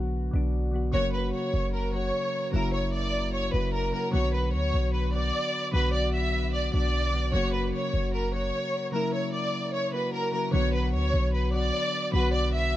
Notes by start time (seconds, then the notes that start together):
Already playing: B1 D3 F#3 B3 F#4
0.31 B1 D3 F#3 B3
0.36 D4
0.71 D3 F#3 B3
0.76 F#4
0.92 F#1 C#3 F#3 A#3 C#5
0.96 F#4
1.14 B4
1.34 C#5
1.54 F#1
1.74 A#4
1.92 C#3 F#3 A#3 C#5
1.96 F#4
2.52 F#1 C#3 F#3 A#3 A#4
2.56 E4
2.74 C#5
2.94 D5
3.34 C#5
3.51 F#1 C#3 F#3 A#3 B4
3.56 F#4
3.74 A#4
3.92 C#3 F#3 A#3 A#4
3.96 F#4
4.12 B1 D3 F#3 B3 C#5
4.16 F#4
4.34 B4
4.54 D2 C#5
4.74 B1
4.94 B4
5.12 D3 F#3 B3 D5
5.16 F#4
5.72 B1 D3 F#3 B3 B4
5.76 F#4
5.94 D5
6.14 E5
6.54 D5
6.71 B1 D3 F#3 B3 D5
6.76 D4
7.11 D3 F#3 B3
7.16 F#4
7.32 F#1 C#3 F#3 A#3 C#5
7.36 F#4
7.54 B4
7.74 C#5
7.94 F#1
8.14 A#4
8.32 C#3 F#3 A#3 C#5
8.36 F#4
8.92 C#3 F#3 A#3 A#4
8.96 E4
9.14 C#5
9.34 D5
9.74 C#5
9.91 C#3 F#3 A#3 B4
9.96 F#4
10.14 A#4
10.32 C#3 F#3 A#3 A#4
10.36 F#4
10.51 B1 D3 F#3 B3 C#5
10.56 F#4
10.74 B4
10.94 D2 C#5
11.14 B1
11.34 B4
11.52 D3 F#3 B3 D5
11.56 F#4
12.12 B1 D3 F#3 B3 B4
12.16 F#4
12.34 D5
12.54 E5